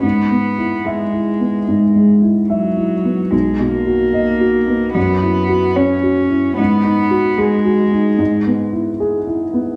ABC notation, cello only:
X:1
M:4/4
L:1/8
Q:1/4=74
K:Elyd
V:1 name="Cello"
B,2 G,3 z F,2 | G, A,3 B,2 C2 | B,2 G,3 z3 |]